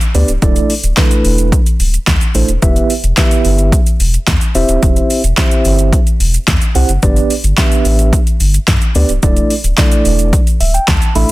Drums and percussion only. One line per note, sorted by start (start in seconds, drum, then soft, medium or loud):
0.01 closed hi-hat medium
0.01 shaker medium
0.15 open hi-hat medium
0.15 shaker medium
0.28 closed hi-hat medium
0.28 shaker medium
0.42 kick loud
0.42 closed hi-hat medium
0.42 shaker medium
0.56 closed hi-hat medium
0.56 shaker medium
0.70 open hi-hat medium
0.70 shaker medium
0.84 closed hi-hat medium
0.84 shaker medium
0.97 kick loud
0.97 snare loud
0.97 clap loud
0.97 closed hi-hat medium
0.97 shaker medium
1.11 closed hi-hat medium
1.11 shaker medium
1.25 open hi-hat medium
1.25 shaker medium
1.38 closed hi-hat medium
1.38 shaker medium
1.52 kick loud
1.52 closed hi-hat medium
1.52 shaker medium
1.66 closed hi-hat medium
1.66 shaker medium
1.80 open hi-hat medium
1.80 shaker medium
1.94 closed hi-hat soft
1.94 shaker medium
2.07 kick loud
2.07 snare loud
2.07 clap loud
2.07 closed hi-hat medium
2.07 shaker medium
2.21 closed hi-hat medium
2.21 shaker medium
2.35 open hi-hat medium
2.35 shaker medium
2.48 closed hi-hat medium
2.48 shaker medium
2.62 kick loud
2.62 closed hi-hat medium
2.62 shaker medium
2.76 closed hi-hat medium
2.76 shaker medium
2.90 open hi-hat medium
2.90 shaker medium
3.04 closed hi-hat medium
3.04 shaker medium
3.17 kick loud
3.17 snare loud
3.17 clap loud
3.17 closed hi-hat medium
3.17 shaker medium
3.31 closed hi-hat medium
3.31 shaker medium
3.45 open hi-hat medium
3.45 shaker medium
3.58 closed hi-hat soft
3.58 shaker medium
3.72 kick loud
3.72 closed hi-hat medium
3.72 shaker medium
3.87 closed hi-hat medium
3.87 shaker medium
4.00 open hi-hat medium
4.00 shaker medium
4.14 closed hi-hat medium
4.14 shaker medium
4.28 kick loud
4.28 snare medium
4.28 clap loud
4.28 closed hi-hat medium
4.28 shaker medium
4.41 closed hi-hat medium
4.41 shaker medium
4.55 open hi-hat medium
4.55 shaker medium
4.69 closed hi-hat medium
4.69 shaker medium
4.83 kick loud
4.83 closed hi-hat medium
4.83 shaker medium
4.96 closed hi-hat medium
4.96 shaker medium
5.10 open hi-hat medium
5.10 shaker medium
5.24 closed hi-hat medium
5.24 shaker medium
5.38 kick loud
5.38 snare loud
5.38 clap loud
5.38 closed hi-hat medium
5.38 shaker medium
5.51 closed hi-hat medium
5.51 shaker medium
5.65 open hi-hat medium
5.65 shaker medium
5.79 closed hi-hat medium
5.79 shaker medium
5.93 kick loud
5.93 closed hi-hat medium
5.93 shaker medium
6.07 closed hi-hat medium
6.07 shaker medium
6.20 open hi-hat medium
6.20 shaker medium
6.34 closed hi-hat medium
6.34 shaker medium
6.48 kick loud
6.48 snare medium
6.48 clap loud
6.48 closed hi-hat medium
6.48 shaker medium
6.62 closed hi-hat medium
6.62 shaker medium
6.75 open hi-hat medium
6.75 shaker medium
6.89 closed hi-hat medium
6.89 shaker medium
7.03 kick loud
7.03 closed hi-hat medium
7.03 shaker medium
7.16 closed hi-hat medium
7.16 shaker medium
7.30 open hi-hat medium
7.30 shaker medium
7.44 closed hi-hat medium
7.44 shaker medium
7.58 kick loud
7.58 snare loud
7.58 clap loud
7.58 closed hi-hat medium
7.58 shaker medium
7.72 closed hi-hat medium
7.72 shaker medium
7.85 open hi-hat medium
7.85 shaker medium
7.99 closed hi-hat medium
7.99 shaker medium
8.13 kick loud
8.13 closed hi-hat medium
8.13 shaker medium
8.27 closed hi-hat medium
8.27 shaker medium
8.40 open hi-hat medium
8.40 shaker medium
8.54 closed hi-hat medium
8.54 shaker medium
8.68 kick loud
8.68 snare loud
8.68 clap loud
8.68 closed hi-hat medium
8.68 shaker medium
8.82 closed hi-hat medium
8.82 shaker medium
8.95 open hi-hat medium
8.95 shaker medium
9.09 closed hi-hat medium
9.09 shaker medium
9.23 kick loud
9.23 closed hi-hat medium
9.23 shaker medium
9.37 closed hi-hat medium
9.37 shaker medium
9.50 open hi-hat medium
9.50 shaker medium
9.64 closed hi-hat medium
9.64 shaker medium
9.78 kick loud
9.78 snare loud
9.78 clap loud
9.78 closed hi-hat medium
9.78 shaker medium
9.92 closed hi-hat medium
9.92 shaker medium
10.05 open hi-hat medium
10.05 shaker medium
10.19 closed hi-hat soft
10.19 shaker medium
10.33 kick loud
10.33 closed hi-hat medium
10.33 shaker medium
10.47 closed hi-hat medium
10.47 shaker medium
10.60 open hi-hat medium
10.60 shaker medium
10.75 closed hi-hat medium
10.75 shaker medium
10.88 kick loud
10.88 snare medium
10.88 clap loud
10.88 closed hi-hat medium
10.88 shaker medium
11.02 closed hi-hat medium
11.02 shaker medium
11.15 open hi-hat medium
11.15 shaker medium